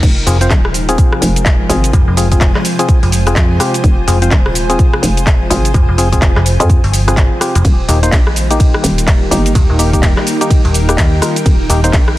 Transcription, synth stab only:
0.27 0.38 C4 medium
0.27 0.38 F4 medium
0.27 0.38 G#4 medium
0.41 0.52 C4 medium
0.41 0.52 F4 medium
0.41 0.52 C5 loud
0.89 1.67 C4 loud
0.89 1.67 F4 medium
0.89 1.67 G#4 loud
1.70 1.91 C4 medium
1.70 1.91 F4 medium
1.70 1.91 G#4 medium
2.17 2.28 C4 medium
2.17 2.28 F4 medium
2.17 2.28 G#4 medium
2.31 2.52 C4 medium
2.31 2.52 F4 medium
2.31 2.52 G#4 loud
2.79 2.99 C4 loud
2.79 2.99 F4 medium
2.79 2.99 G#4 loud
3.27 3.58 C4 medium
3.27 3.58 F4 medium
3.27 3.58 G#4 loud
3.60 3.75 C4 medium
3.60 3.75 F4 medium
3.60 3.75 G4 loud
4.08 4.19 C4 medium
4.08 4.18 F4 medium
4.08 4.19 G#4 medium
4.22 4.33 C4 medium
4.22 4.33 F4 medium
4.22 4.33 C5 loud
4.70 5.48 C4 loud
4.70 5.48 F4 medium
4.70 5.48 G#4 loud
5.50 5.72 C4 medium
5.50 5.72 F4 medium
5.50 5.72 G#4 medium
5.98 6.09 C4 medium
5.98 6.09 F4 medium
5.98 6.09 G#4 medium
6.12 6.33 C4 medium
6.12 6.33 F4 medium
6.12 6.33 G#4 loud
6.60 6.80 C4 loud
6.60 6.80 F4 medium
6.60 6.80 G#4 loud
7.08 7.39 C4 medium
7.08 7.39 F4 medium
7.08 7.39 G#4 loud
7.41 7.56 C4 medium
7.41 7.56 F4 medium
7.41 7.56 G4 loud
7.88 7.99 A#3 medium
7.88 7.99 D#4 medium
7.88 7.99 G4 medium
8.03 8.14 A#3 medium
8.03 8.14 D#4 medium
8.03 8.14 C5 loud
8.51 9.29 A#3 medium
8.51 9.29 D#4 medium
8.51 9.29 G4 loud
9.31 9.53 A#3 medium
9.31 9.53 D#4 medium
9.31 9.53 G4 loud
9.79 9.90 A#3 medium
9.79 9.90 D#4 medium
9.79 9.90 G4 medium
9.93 10.14 A#3 medium
9.93 10.14 D#4 medium
9.93 10.14 G4 loud
10.41 10.61 A#3 loud
10.41 10.61 D#4 medium
10.41 10.61 G4 loud
10.89 11.20 A#3 medium
10.89 11.20 D#4 medium
10.89 11.20 G4 medium
11.22 11.37 A#3 medium
11.22 11.37 D#4 medium
11.22 11.37 F4 loud
11.69 11.80 A#3 medium
11.69 11.80 D#4 medium
11.69 11.80 G4 medium
11.84 11.95 A#3 medium
11.84 11.95 D#4 medium
11.84 11.95 C5 loud

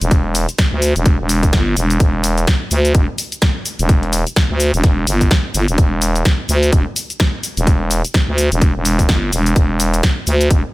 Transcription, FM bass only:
0.01 0.46 E1 medium
0.72 0.94 D2 loud
0.96 1.17 E1 loud
1.20 1.51 E1 loud
1.53 1.75 G1 loud
1.76 1.99 E1 loud
2.00 2.46 E1 loud
2.71 2.93 D2 loud
2.95 3.06 E1 loud
3.79 4.24 E1 medium
4.50 4.72 D2 medium
4.74 4.82 E1 loud
4.84 5.06 E1 medium
5.07 5.29 G1 medium
5.54 5.66 G1 loud
5.68 5.76 E1 medium
5.78 6.24 E1 medium
6.49 6.71 D2 loud
6.72 6.84 E1 medium
7.57 8.02 E1 loud
8.28 8.50 D2 medium
8.52 8.73 E1 loud
8.75 9.07 E1 medium
9.09 9.31 G1 loud
9.32 9.54 E1 loud
9.56 10.02 E1 loud
10.27 10.49 D2 loud
10.50 10.62 E1 medium

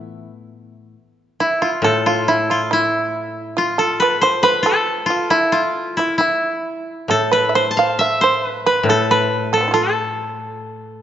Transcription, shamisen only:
1.40 1.61 E4 medium
1.62 1.83 F4 medium
1.84 2.05 A4 medium
2.07 2.27 F4 medium
2.29 2.49 E4 medium
2.50 2.70 F4 medium
2.71 3.32 E4 medium
3.57 3.77 F4 medium
3.78 3.98 A4 medium
4.02 4.21 B4 medium
4.23 4.42 C5 medium
4.44 4.63 B4 medium
4.66 5.06 A4 medium
5.10 5.30 F4 medium
5.31 5.52 E4 medium
5.53 5.95 F4 medium
5.99 6.19 E4 medium
6.21 6.84 E4 medium
7.10 7.31 A4 medium
7.32 7.48 B4 medium
7.49 7.55 E5 soft
7.55 7.76 C5 medium
7.79 7.99 F5 medium
8.01 8.21 E5 medium
8.24 8.63 C5 medium
8.66 8.86 B4 medium
8.89 9.08 A4 medium
9.11 9.50 B4 medium
9.53 9.67 F3 soft
9.53 9.62 A4 medium
9.58 9.60 A3 soft
9.58 9.73 B3 soft
9.63 9.73 C4 soft
9.68 9.71 E4 soft
9.68 9.84 F4 soft
9.74 10.34 A4 medium

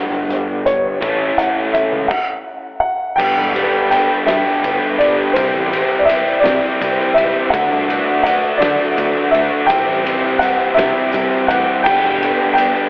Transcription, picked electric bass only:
0.11 0.25 G1 medium
0.29 0.86 G1 medium
1.02 1.30 A1 medium
1.92 2.06 C#2 medium
3.20 3.33 G1 loud
3.37 3.65 E1 medium
4.27 4.41 G2 medium
4.64 4.78 G1 medium
4.99 5.13 G1 medium
5.37 5.50 C2 loud
5.54 5.82 A1 medium
6.44 6.58 C3 medium
6.82 6.95 C2 medium
7.18 7.31 C#2 medium
7.53 7.67 D2 loud
7.72 7.99 C2 medium
8.61 8.75 D3 medium
8.98 9.12 D2 medium
9.34 9.48 D2 medium
9.70 9.84 C2 loud
9.87 10.16 A1 medium
10.78 10.92 C3 medium
11.14 11.28 C2 medium
11.49 11.63 A1 medium
11.86 12.00 G1 loud
12.04 12.32 E1 medium

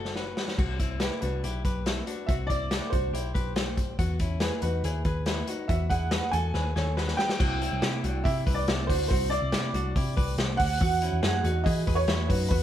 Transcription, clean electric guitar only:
0.00 0.16 F#4 medium
0.00 0.16 A4 medium
0.16 0.57 F#4 soft
0.16 0.56 B4 medium
0.59 0.80 C4 medium
0.59 0.80 F#4 medium
0.80 1.02 C4 medium
0.80 1.01 E4 medium
1.01 1.23 E4 medium
1.01 1.23 G4 medium
1.23 1.44 D4 soft
1.23 1.44 F#4 medium
1.44 1.65 E4 medium
1.44 1.65 G4 medium
1.65 1.86 G4 medium
1.65 1.86 B4 medium
1.86 2.07 C4 medium
1.86 2.06 E4 medium
2.07 2.29 D4 medium
2.07 2.28 F#4 medium
2.29 2.49 C4 medium
2.29 2.49 F#4 medium
2.50 2.72 C4 medium
2.50 2.71 E4 medium
2.71 2.93 E4 medium
2.71 2.92 G4 medium
2.92 3.14 D4 medium
2.92 3.13 F#4 medium
3.14 3.34 E4 medium
3.14 3.34 G4 medium
3.35 3.56 G4 medium
3.35 3.56 B4 medium
3.56 3.97 G4 medium
3.56 3.96 C5 medium
3.99 4.21 B3 medium
3.99 4.20 F#4 medium
4.20 4.42 C#4 medium
4.20 4.41 E4 medium
4.41 4.63 E4 medium
4.41 4.62 G#4 medium
4.62 4.85 D#4 medium
4.62 4.84 F#4 medium
4.85 5.06 E4 medium
4.85 5.05 G#4 medium
5.05 5.27 G#4 medium
5.05 5.27 B4 medium
5.27 5.48 B3 medium
5.27 5.48 E4 medium
5.48 5.70 D#4 medium
5.48 5.68 F#4 medium
5.70 5.91 B3 medium
5.70 5.90 F#4 medium
5.91 6.12 E4 medium
5.91 6.12 G#4 medium
6.12 6.34 G#4 medium
6.12 6.33 B4 medium
6.33 6.55 F#4 medium
6.33 6.54 A4 medium
6.54 6.76 G#4 medium
6.54 6.75 B4 medium
6.76 6.97 A4 medium
6.76 6.97 C#5 medium
6.97 7.38 G#4 medium
6.97 7.37 B4 medium
7.39 7.61 C4 medium
7.39 7.60 F#4 medium
7.61 7.83 C4 medium
7.61 7.82 E4 medium
7.82 8.04 E4 medium
7.82 8.03 G4 medium
8.04 8.25 D4 medium
8.04 8.24 F#4 medium
8.25 8.46 E4 medium
8.25 8.46 G4 medium
8.46 8.68 G4 medium
8.46 8.68 B4 medium
8.68 8.90 C4 medium
8.68 8.89 E4 medium
8.89 9.11 D4 medium
8.89 9.09 F#4 medium
9.10 9.31 C4 medium
9.10 9.31 F#4 medium
9.31 9.53 C4 medium
9.31 9.53 E4 medium
9.53 9.75 E4 medium
9.53 9.74 G4 medium
9.75 9.96 D4 medium
9.75 9.95 F#4 medium
9.96 10.16 E4 medium
9.96 10.16 G4 medium
10.17 10.38 G4 medium
10.17 10.38 B4 medium
10.38 10.79 G4 medium
10.38 10.78 C5 medium
10.81 11.02 B3 medium
10.81 11.02 F#4 medium
11.02 11.23 C#4 medium
11.02 11.22 E4 medium
11.22 11.45 E4 medium
11.22 11.44 G#4 medium
11.44 11.65 D#4 soft
11.44 11.66 F#4 medium
11.66 11.87 E4 medium
11.66 11.86 G#4 medium
11.87 12.08 G#4 medium
11.87 12.07 B4 medium
12.08 12.29 B3 medium
12.08 12.29 E4 medium
12.29 12.51 D#4 medium
12.29 12.50 F#4 medium
12.51 12.63 B3 medium
12.51 12.63 F#4 medium

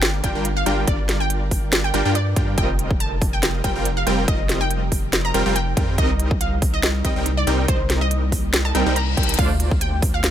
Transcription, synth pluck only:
0.00 0.16 G5 loud
0.24 0.48 G5 medium
0.57 0.80 F5 medium
0.88 1.11 D5 medium
1.20 1.44 G5 loud
1.84 2.08 G5 loud
2.15 2.48 D5 loud
2.58 2.90 G5 loud
3.00 3.24 A5 medium
3.33 3.57 G5 loud
3.64 3.88 G5 medium
3.97 4.20 F5 medium
4.28 4.52 D#5 loud
4.61 4.84 G5 loud
5.25 5.48 A#5 loud
5.56 5.88 G5 loud
5.98 6.31 D#5 loud
6.41 6.65 F5 medium
6.74 6.97 D#5 loud
7.05 7.29 D#5 medium
7.37 7.61 D5 medium
7.68 7.92 C5 loud
8.01 8.25 D#5 loud
8.65 8.89 A5 loud
8.96 9.29 A#5 loud
9.39 9.71 F5 loud
9.81 10.05 G5 loud
10.14 10.31 F5 loud

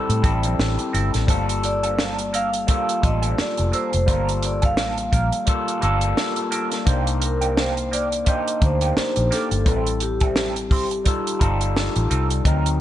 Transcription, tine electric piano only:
0.00 0.22 G3 medium
0.00 0.23 C4 medium
0.00 0.24 E4 medium
0.00 0.25 A4 medium
0.22 0.90 G3 medium
0.22 0.90 C4 medium
0.22 0.91 E4 medium
0.22 0.91 A4 medium
1.27 2.19 G3 medium
1.27 1.36 A3 medium
1.27 2.20 F4 medium
1.27 2.20 A4 medium
1.34 2.22 A#3 medium
2.67 2.92 G3 medium
2.67 2.92 A#3 medium
2.67 2.93 F4 medium
2.67 2.93 A4 medium
3.02 3.69 G3 medium
3.02 3.70 A#3 medium
3.02 3.71 F4 medium
3.02 3.71 A4 medium
4.06 4.98 G3 medium
4.06 4.99 A#3 medium
4.06 4.99 F4 medium
4.06 5.00 A4 medium
5.46 5.71 G3 medium
5.46 5.71 A#3 medium
5.46 5.72 F4 medium
5.46 5.72 A4 medium
5.80 6.48 G3 medium
5.80 6.49 A#3 medium
5.80 6.49 F4 medium
5.80 6.50 A4 medium
6.85 7.77 A#3 medium
6.85 7.78 D4 medium
6.85 7.78 D#4 medium
6.85 7.79 C5 medium
8.25 8.50 A#3 medium
8.25 8.51 D4 medium
8.25 8.51 D#4 medium
8.25 8.52 C5 medium
8.60 9.28 A#3 medium
8.60 9.28 D4 medium
8.60 9.29 D#4 medium
8.60 9.29 G4 medium
9.65 10.57 G3 medium
9.65 10.57 C4 medium
9.65 10.58 E4 medium
9.65 10.58 A4 medium
11.04 11.29 G3 medium
11.04 11.30 D#4 medium
11.04 11.31 F4 medium
11.04 11.31 A4 medium
11.39 12.07 G3 medium
11.39 12.07 D#4 medium
11.39 12.08 F4 medium
11.39 12.08 A4 medium
12.44 12.81 F#3 medium
12.44 12.81 C4 medium
12.44 12.81 D#4 medium
12.44 12.81 A#4 medium

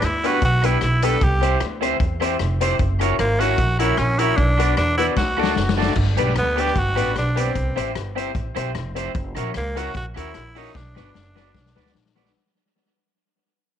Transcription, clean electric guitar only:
0.03 muted clean electric guitar stroke soft
0.24 0.37 D4 loud
0.24 0.37 G4 medium
0.24 0.38 B4 loud
0.63 0.76 D4 medium
0.63 0.77 G4 medium
0.63 0.77 B4 loud
1.03 1.16 D4 medium
1.03 1.16 G4 medium
1.03 1.17 B4 loud
1.43 1.56 E4 medium
1.43 1.56 G4 loud
1.43 1.57 C5 medium
1.61 muted clean electric guitar stroke soft
1.81 1.95 E4 medium
1.81 1.95 G4 loud
1.81 1.96 C5 loud
2.21 2.35 E4 medium
2.21 2.35 G4 medium
2.21 2.35 C5 loud
2.61 2.74 E4 medium
2.61 2.75 G4 medium
2.61 2.75 C5 loud
3.01 3.14 E4 medium
3.01 3.14 A#4 medium
3.01 3.15 C#5 loud
3.19 muted clean electric guitar stroke soft
3.39 3.53 E4 medium
3.39 3.54 A#4 loud
3.39 3.54 C#5 loud
3.80 3.93 E4 loud
3.80 3.94 A#4 loud
3.80 3.94 C#5 loud
4.19 4.32 E4 medium
4.19 4.33 A#4 medium
4.19 4.34 C#5 medium
4.58 4.72 F#4 medium
4.58 4.73 B4 medium
4.58 4.73 D5 medium
4.77 muted clean electric guitar stroke soft
4.98 5.12 F#4 medium
4.98 5.12 B4 medium
4.98 5.13 D5 loud
5.37 5.51 F#4 medium
5.37 5.52 A4 loud
5.37 5.52 D5 loud
5.56 muted clean electric guitar stroke soft
5.77 5.91 F#4 medium
5.77 5.91 A4 loud
5.77 5.92 D5 medium
6.17 6.31 G4 medium
6.17 6.32 B4 medium
6.17 6.32 D5 medium
6.35 muted clean electric guitar stroke soft
6.56 6.70 G4 medium
6.56 6.71 B4 loud
6.56 6.71 D5 loud
6.96 7.10 G4 medium
6.96 7.11 B4 loud
6.96 7.11 D5 loud
7.36 7.50 G4 medium
7.36 7.51 B4 medium
7.36 7.51 D5 medium
7.76 7.90 E4 medium
7.76 7.90 G4 medium
7.76 7.91 C5 medium
7.95 muted clean electric guitar stroke soft
8.16 8.30 E4 medium
8.16 8.30 G4 medium
8.16 8.31 C5 medium
8.55 8.69 E4 medium
8.55 8.70 G4 medium
8.55 8.70 C5 loud
8.96 9.10 E4 medium
8.96 9.10 G4 medium
8.96 9.11 C5 medium
9.36 9.50 E4 medium
9.36 9.50 A#4 medium
9.36 9.51 C#5 medium
9.54 muted clean electric guitar stroke soft
9.76 9.89 E4 medium
9.76 9.90 A#4 loud
9.76 9.90 C#5 loud
10.16 10.29 E4 medium
10.16 10.30 A#4 loud
10.16 10.30 C#5 loud
10.55 10.69 E4 medium
10.55 10.70 A#4 medium
10.55 10.70 C#5 loud
10.96 11.10 F#4 medium
10.96 11.10 B4 medium
10.96 11.10 D5 medium
11.14 muted clean electric guitar stroke soft
11.35 11.49 F#4 medium
11.35 11.49 B4 loud
11.35 11.50 D5 medium
11.76 11.89 F#4 loud
11.76 11.90 B4 loud
11.76 11.90 D5 loud
12.16 12.29 F#4 medium
12.16 12.30 B4 medium
12.16 12.30 D5 loud

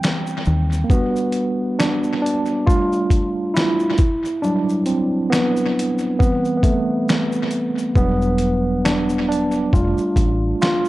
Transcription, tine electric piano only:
0.00 0.42 E3 medium
0.00 0.43 G3 soft
0.00 0.43 C4 medium
0.00 0.42 G5 medium
0.84 0.90 A#3 medium
0.90 2.19 G3 medium
0.90 1.74 B3 medium
0.90 1.77 D4 medium
0.90 2.19 F#4 medium
1.79 2.19 D4 medium
2.22 2.42 D4 medium
2.66 3.95 G3 medium
2.66 3.96 A3 soft
2.66 3.96 D4 medium
2.66 3.57 F4 loud
3.54 4.45 E4 medium
4.42 6.16 F#3 medium
4.42 6.16 G3 medium
4.42 4.44 D4 medium
4.42 6.16 D4 medium
4.86 5.27 C4 medium
5.30 6.15 B3 medium
6.19 6.80 E3 medium
6.19 6.81 G3 soft
6.19 6.56 B3 medium
6.19 6.81 C4 medium
6.57 6.63 B3 medium
6.63 7.47 A3 medium
7.96 8.57 F#3 medium
7.96 8.57 G3 medium
7.96 8.87 B3 medium
7.96 8.57 D4 medium
8.85 9.25 D4 medium
9.29 9.73 D4 medium
9.73 10.89 G3 medium
9.73 10.89 A3 soft
9.73 10.89 D4 medium
9.73 10.60 F4 medium
10.62 10.81 F4 loud

